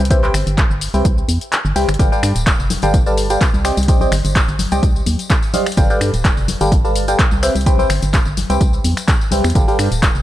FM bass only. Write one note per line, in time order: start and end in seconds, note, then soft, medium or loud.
0.00 0.30 C2 medium
0.34 0.44 G1 loud
0.47 0.65 G1 loud
0.70 0.89 G1 medium
0.94 1.03 C2 medium
1.05 1.24 C2 medium
1.28 1.39 E2 medium
1.65 1.74 G1 medium
1.76 1.86 C2 medium
1.88 1.97 G1 medium
1.99 2.09 G1 loud
2.23 2.33 G2 loud
2.36 2.54 D1 loud
2.59 2.78 F1 medium
2.83 3.37 G1 medium
3.54 3.72 C2 medium
3.77 4.08 C2 medium
4.12 4.22 G1 loud
4.25 4.43 G1 loud
4.48 4.67 G1 medium
4.72 4.81 C2 loud
4.83 5.02 C2 medium
5.07 5.17 D#2 loud
5.77 5.87 G1 loud
6.01 6.11 G2 loud
6.14 6.32 D1 loud
6.37 6.56 F1 medium
6.61 7.15 G1 medium
7.32 7.50 C2 medium
7.55 7.86 C2 medium
7.90 8.00 G1 loud
8.03 8.21 G1 loud
8.26 8.45 G1 medium
8.50 8.59 C2 medium
8.61 8.80 C2 medium
8.85 8.95 E2 medium
9.32 9.42 C2 medium
9.44 9.53 E2 loud
9.55 9.65 G1 loud
9.79 9.89 G2 loud
9.92 10.10 D1 loud
10.15 10.22 F1 medium